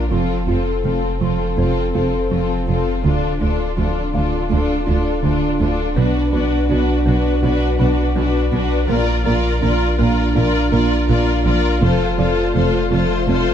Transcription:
Already playing: A#1 D4 F4 A#4 F5
0.10 F1 F2 F3 C4 F4 A4
0.47 F1 F2 C4 F4 A4
0.84 F1 F2 A3 C4 F4 A4
1.21 F1 F2 F3 C4 F4 A4
1.58 F1 F2 C4 F4 A4 C5
1.94 F1 F2 C4 F4 A4
2.31 F1 F2 F3 C4 F4 A4
2.68 F1 F2 C4 F4 A4
3.03 D1 D2 D3 D4 F4 A4
3.41 D2 D4 F4 A4
3.77 D2 F3 D4 F4 A4
4.14 D2 D3 D4 F4 A4 F5
4.50 D2 A3 D4 F4 A4
4.87 D2 D4 F4 A4
5.23 D2 D3 D4 F4 A4
5.60 D2 D4 F4 A4
5.96 B1 B2 B3 D4 F#4 B4
6.32 B1 B2 D4 F#4 B4
6.69 B1 B2 D4 F#4 B4
7.06 B1 B2 B3 D4 F#4 B4
7.43 B1 B2 D4 F#4 B4
7.79 B1 B2 D4 F#4 B4
8.16 B1 B2 B3 D4 F#4 B4
8.52 B1 B2 D4 F#4 B4
8.88 A#1 A#2 A#3 D4 F4 A#4 D5
9.25 A#1 A#2 F4 A#4 D5
9.62 A#1 A#2 D4 F4 A#4 D5
9.98 A#1 A#2 A#3 F4 A#4 D5
10.35 A#1 A#2 F4 A#4 D5
10.72 A#1 A#2 F4 A#4 D5
11.09 A#1 A#2 A#3 F4 A#4 D5
11.45 A#1 A#2 F4 A#4 D5
11.82 F1 F2 F3 A3 F4 A4 C5
12.18 F1 F2 F4 A4 C5 D5
12.54 F1 F2 A3 F4 A4 C5
12.91 F1 F2 F3 F4 A4 C5
13.28 F1 F2 C4 F4 A4 C5

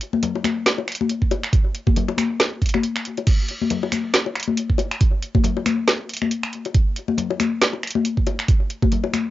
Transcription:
0.01 closed hi-hat
0.13 high conga
0.23 closed hi-hat, low conga
0.35 high bongo
0.44 finger snap, open hi-hat, high conga
0.66 finger snap, snare, closed hi-hat
0.78 high bongo
0.88 finger snap, closed hi-hat
0.92 closed hi-hat
0.95 closed hi-hat
1.01 high conga
1.09 closed hi-hat
1.22 kick
1.31 closed hi-hat, high bongo
1.44 finger snap, closed hi-hat
1.53 kick, closed hi-hat
1.75 closed hi-hat
1.87 kick, high conga
1.96 closed hi-hat, low conga
2.09 high bongo
2.18 finger snap, open hi-hat, high conga
2.40 snare, closed hi-hat
2.62 kick, closed hi-hat
2.66 closed hi-hat
2.69 closed hi-hat
2.74 finger snap, high bongo, high conga
2.83 closed hi-hat
2.96 finger snap
3.05 closed hi-hat
3.17 closed hi-hat, high bongo
3.27 kick, closed hi-hat, crash
3.49 closed hi-hat
3.62 high conga
3.70 closed hi-hat, low conga
3.83 high bongo
3.92 finger snap, open hi-hat, high conga
4.14 finger snap, snare, closed hi-hat
4.26 high bongo
4.36 finger snap, closed hi-hat
4.40 closed hi-hat
4.43 closed hi-hat
4.48 high conga
4.57 closed hi-hat
4.70 kick
4.78 closed hi-hat, high bongo
4.91 finger snap, closed hi-hat
5.01 kick, closed hi-hat
5.22 closed hi-hat
5.35 kick, high conga
5.44 closed hi-hat, low conga
5.57 high bongo
5.66 finger snap, open hi-hat, high conga
5.88 snare, closed hi-hat
6.09 closed hi-hat
6.14 closed hi-hat
6.17 closed hi-hat
6.22 finger snap, high conga
6.31 closed hi-hat
6.43 finger snap
6.53 closed hi-hat
6.65 closed hi-hat, high bongo
6.75 kick, closed hi-hat
6.96 closed hi-hat
7.08 high conga
7.18 closed hi-hat, low conga
7.30 high bongo
7.40 finger snap, open hi-hat, high conga
7.62 finger snap, snare, closed hi-hat
7.73 high bongo
7.83 finger snap, closed hi-hat
7.87 closed hi-hat
7.91 closed hi-hat
7.95 high conga
8.05 closed hi-hat
8.17 kick
8.27 closed hi-hat, high bongo
8.39 finger snap, closed hi-hat
8.49 kick, closed hi-hat
8.70 closed hi-hat
8.83 kick, high conga
8.92 closed hi-hat, low conga
9.04 high bongo
9.14 finger snap, open hi-hat, high conga

